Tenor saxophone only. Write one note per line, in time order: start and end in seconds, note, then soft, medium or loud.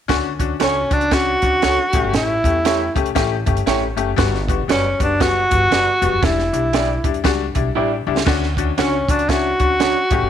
0.62 0.95 C#4 medium
0.93 1.15 D4 medium
1.13 2.15 F#4 medium
2.16 2.93 E4 medium
4.71 4.99 C#4 medium
5.03 5.24 D4 medium
5.22 6.26 F#4 loud
6.24 7.05 E4 medium
8.79 9.11 C#4 medium
9.10 9.31 D4 medium
9.30 10.30 F#4 loud